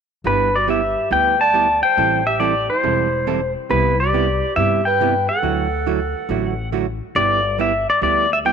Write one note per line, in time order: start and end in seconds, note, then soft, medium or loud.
0.24 0.94 G1 medium
0.24 0.48 G3 medium
0.24 0.48 B3 medium
0.24 0.53 D4 medium
0.24 0.48 E4 medium
0.24 0.48 G4 medium
0.24 0.56 B4 medium
0.56 0.68 F#4 medium
0.56 0.68 D5 medium
0.68 0.80 G3 medium
0.68 0.80 B3 medium
0.68 0.80 E4 medium
0.68 1.08 G4 medium
0.68 0.81 G4 medium
0.68 1.10 E5 medium
1.11 1.80 D2 medium
1.11 1.34 G3 soft
1.11 1.34 B3 medium
1.11 1.34 E4 medium
1.11 1.34 G4 medium
1.11 1.38 B4 medium
1.11 1.42 G5 medium
1.41 1.81 D5 medium
1.41 1.82 A5 medium
1.53 1.66 G3 medium
1.53 1.66 B3 medium
1.53 1.67 E4 medium
1.53 1.67 G4 medium
1.83 2.24 C5 medium
1.83 2.23 G5 medium
1.97 2.67 A1 medium
1.97 2.21 E3 medium
1.97 2.21 G3 medium
1.97 2.21 C4 medium
1.97 2.21 E4 medium
1.97 2.21 A4 medium
2.27 2.40 G4 medium
2.27 2.40 E5 medium
2.40 2.53 E3 medium
2.40 2.53 G3 medium
2.40 2.53 C4 medium
2.40 2.53 E4 medium
2.40 2.68 G4 medium
2.40 2.53 A4 medium
2.40 2.70 D5 medium
2.70 3.53 E4 medium
2.70 3.52 C5 medium
2.83 3.53 E1 medium
2.83 3.07 E3 medium
2.83 3.07 G3 medium
2.83 3.07 C4 medium
2.83 3.07 E4 medium
2.83 3.07 A4 medium
3.27 3.39 E3 medium
3.27 3.39 G3 medium
3.27 3.39 C4 medium
3.27 3.39 E4 medium
3.27 3.40 A4 medium
3.69 4.40 C2 medium
3.69 3.93 C3 medium
3.69 3.93 G3 medium
3.69 3.93 B3 medium
3.69 3.94 E4 medium
3.69 3.99 E4 medium
3.69 3.93 G4 medium
3.69 3.98 B4 medium
4.00 4.54 G4 medium
4.00 4.53 D5 medium
4.13 4.26 C3 medium
4.13 4.26 G3 medium
4.13 4.26 B3 medium
4.13 4.26 E4 medium
4.13 4.26 G4 medium
4.56 5.26 G2 medium
4.56 4.80 C3 medium
4.56 4.80 G3 medium
4.56 4.80 B3 medium
4.56 4.80 E4 medium
4.56 4.80 G4 medium
4.56 4.85 G4 medium
4.56 4.87 E5 loud
4.85 5.27 B4 medium
4.85 5.28 G5 medium
5.00 5.12 C3 medium
5.00 5.13 G3 medium
5.00 5.13 B3 medium
5.00 5.13 E4 medium
5.00 5.13 G4 medium
5.29 6.70 A4 medium
5.29 6.69 F#5 medium
5.43 6.12 D2 medium
5.43 5.66 D3 medium
5.43 5.66 F#3 medium
5.43 5.66 A3 medium
5.43 5.67 E4 medium
5.43 5.67 F#4 medium
5.86 5.99 D3 medium
5.86 5.99 F#3 medium
5.86 5.99 A3 medium
5.86 5.99 E4 medium
5.86 5.99 F#4 medium
6.29 6.98 A1 medium
6.29 6.53 D3 medium
6.29 6.53 F#3 medium
6.29 6.53 A3 medium
6.29 6.53 E4 medium
6.29 6.53 F#4 medium
6.72 6.85 D3 medium
6.72 6.85 F#3 medium
6.72 6.85 A3 medium
6.72 6.85 E4 medium
6.72 6.85 F#4 medium
7.15 7.85 G1 medium
7.15 7.39 G3 medium
7.15 7.39 B3 medium
7.15 7.39 E4 medium
7.15 7.40 G4 medium
7.15 7.61 D5 loud
7.58 7.71 G3 medium
7.58 7.71 B3 medium
7.58 7.72 E4 medium
7.58 7.72 G4 medium
7.58 7.89 E5 medium
7.90 8.02 D5 medium
8.01 8.53 D2 medium
8.01 8.25 G3 medium
8.01 8.25 B3 medium
8.01 8.25 E4 medium
8.01 8.26 G4 medium
8.01 8.30 D5 loud
8.33 8.38 E5 medium
8.45 8.53 G3 medium
8.45 8.53 B3 medium
8.45 8.53 E4 medium
8.45 8.53 G4 medium
8.45 8.53 G5 loud